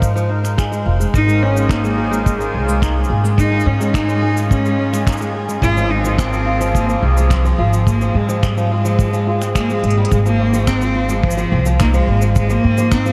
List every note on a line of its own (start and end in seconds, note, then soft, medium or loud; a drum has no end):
0.00 0.86 G#2 medium
0.00 0.15 F3 medium
0.00 1.15 G#3 medium
0.00 2.20 D#4 medium
0.00 2.94 A#4 medium
0.00 2.94 C5 medium
0.00 kick medium
0.00 shaker medium
0.16 0.29 F3 medium
0.16 shaker soft
0.29 0.42 D#4 medium
0.43 0.57 D#4 medium
0.43 finger snap soft
0.43 shaker medium
0.57 0.71 G#4 medium
0.57 finger snap medium
0.57 kick loud
0.57 shaker medium
0.72 0.85 G#3 medium
0.72 shaker soft
0.86 1.03 F1 medium
0.86 0.94 F4 medium
1.00 1.13 G#3 medium
1.00 shaker medium
1.14 2.45 G#1 medium
1.14 5.64 D#3 medium
1.14 10.13 G#3 medium
1.14 1.44 D#4 loud
1.14 10.13 G#5 medium
1.14 kick medium
1.14 shaker medium
1.28 1.41 G#3 medium
1.28 7.43 A#3 medium
1.28 shaker soft
1.42 1.55 C#4 medium
1.42 1.73 C#4 medium
1.42 10.12 G#4 medium
1.56 1.70 G#3 loud
1.56 7.42 F4 medium
1.56 shaker medium
1.69 2.29 A#3 medium
1.69 1.84 D#4 medium
1.69 finger snap medium
1.69 kick medium
1.69 shaker soft
1.84 1.97 G#3 medium
1.84 shaker soft
1.98 2.11 G#4 medium
2.11 2.39 G#3 loud
2.11 shaker medium
2.26 3.11 G#3 medium
2.26 kick medium
2.26 shaker medium
2.40 2.53 G#3 medium
2.40 shaker soft
2.54 3.02 C2 medium
2.54 2.67 C#4 medium
2.68 2.82 G#3 medium
2.68 shaker medium
2.82 2.96 D#4 medium
2.82 finger snap medium
2.82 kick medium
2.82 shaker medium
2.96 3.09 G#3 medium
3.04 shaker soft
3.10 3.57 G#1 medium
3.10 3.23 G#4 medium
3.24 3.50 G#3 medium
3.24 shaker medium
3.38 3.68 D#4 loud
3.38 kick medium
3.38 shaker soft
3.52 3.65 G#3 medium
3.60 shaker soft
3.66 5.54 G#2 medium
3.66 3.79 C#4 medium
3.66 3.95 C#4 loud
3.80 3.94 G#3 loud
3.80 shaker medium
3.94 4.49 D#4 loud
3.94 4.08 D#4 medium
3.94 finger snap medium
3.94 kick loud
3.94 shaker soft
4.08 4.21 G#3 medium
4.08 shaker soft
4.22 4.35 G#4 medium
4.36 4.63 G#3 loud
4.36 shaker medium
4.49 5.30 C#4 medium
4.49 kick medium
4.49 shaker soft
4.65 4.77 G#3 medium
4.65 shaker soft
4.79 4.92 C#4 medium
4.93 5.06 G#3 medium
4.93 finger snap soft
4.93 shaker medium
5.07 5.20 D#4 medium
5.07 finger snap medium
5.07 kick loud
5.07 shaker soft
5.12 shaker soft
5.17 5.33 G#3 medium
5.17 shaker soft
5.22 shaker soft
5.35 5.48 G#4 medium
5.49 5.63 G#3 medium
5.49 shaker medium
5.62 6.94 G#1 medium
5.62 10.11 F3 medium
5.62 5.91 F4 loud
5.62 kick medium
5.62 shaker soft
5.77 5.90 F3 medium
5.77 10.11 C4 medium
5.77 shaker soft
5.90 6.04 G#3 medium
5.90 6.20 D#4 medium
6.04 6.18 F3 loud
6.04 shaker medium
6.18 6.74 C4 loud
6.18 6.32 C4 medium
6.18 finger snap medium
6.18 kick loud
6.18 shaker medium
6.33 6.46 F3 medium
6.33 shaker soft
6.46 6.59 F4 medium
6.61 6.88 F3 loud
6.61 shaker medium
6.75 7.01 A#3 loud
6.75 kick medium
6.75 shaker medium
6.89 7.02 F3 medium
6.89 shaker soft
7.02 7.50 C2 medium
7.02 7.15 G#3 medium
7.02 7.33 G#3 medium
7.17 7.30 F3 medium
7.17 shaker medium
7.30 7.86 F3 medium
7.30 7.44 C4 medium
7.30 finger snap loud
7.30 kick medium
7.30 shaker medium
7.45 7.58 F3 medium
7.45 shaker soft
7.58 8.06 G#1 medium
7.58 7.72 F4 medium
7.73 8.00 F3 medium
7.73 shaker medium
7.87 8.17 A#3 medium
7.87 kick medium
7.87 shaker soft
8.01 8.14 F3 loud
8.01 shaker soft
8.14 9.83 G#2 medium
8.14 8.28 G#3 medium
8.14 8.46 G#3 medium
8.29 8.42 F3 loud
8.29 shaker medium
8.43 8.71 G3 medium
8.43 8.57 C4 medium
8.43 finger snap medium
8.43 kick medium
8.43 shaker soft
8.57 8.70 F3 medium
8.57 shaker soft
8.72 9.52 G#3 medium
8.72 8.84 F4 medium
8.85 9.12 F3 loud
8.85 shaker medium
8.99 kick loud
8.99 shaker soft
9.13 9.26 F3 medium
9.13 shaker soft
9.27 9.41 F4 medium
9.41 9.54 C4 medium
9.41 finger snap soft
9.41 shaker medium
9.55 9.68 G#3 loud
9.55 9.72 A#3 loud
9.55 finger snap loud
9.55 kick medium
9.55 shaker soft
9.70 9.83 F3 medium
9.70 10.12 G#3 loud
9.70 shaker soft
9.83 10.00 G#1 medium
9.83 9.96 G#3 medium
9.83 closed hi-hat medium
9.90 closed hi-hat medium
9.97 10.06 G3 medium
10.05 closed hi-hat medium
10.11 11.43 G#1 loud
10.11 10.18 G#3 medium
10.11 kick medium
10.11 shaker medium
10.26 10.38 F3 medium
10.26 10.69 A#3 loud
10.26 shaker soft
10.39 10.52 C4 medium
10.53 10.67 F3 loud
10.53 shaker medium
10.67 11.12 C4 loud
10.67 10.81 D#4 medium
10.67 finger snap loud
10.67 kick medium
10.67 shaker medium
10.81 10.94 F3 loud
10.81 shaker soft
10.95 11.08 F4 medium
11.09 11.36 F3 loud
11.09 11.24 G#3 loud
11.09 shaker medium
11.23 11.77 F3 loud
11.23 kick loud
11.31 shaker medium
11.37 11.50 F3 loud
11.37 shaker soft
11.52 11.99 C2 loud
11.52 11.64 C4 medium
11.66 11.79 F3 loud
11.66 shaker medium
11.80 11.93 A#3 loud
11.80 11.93 D#4 medium
11.80 finger snap loud
11.80 kick loud
11.80 shaker medium
11.94 12.07 F3 loud
11.94 12.33 G#3 loud
11.94 shaker soft
12.07 12.55 G#1 medium
12.07 12.21 F4 medium
12.22 12.49 F3 medium
12.22 shaker medium
12.36 12.53 G#3 loud
12.36 kick loud
12.36 shaker medium
12.50 12.63 F3 medium
12.50 12.95 A#3 loud
12.50 shaker soft
12.64 13.12 G#2 medium
12.64 12.77 C4 medium
12.78 12.91 F3 loud
12.78 shaker medium
12.92 13.12 C4 loud
12.92 13.05 D#4 medium
12.92 finger snap loud
12.92 kick loud
12.92 shaker medium
13.06 13.12 F3 medium
13.06 shaker soft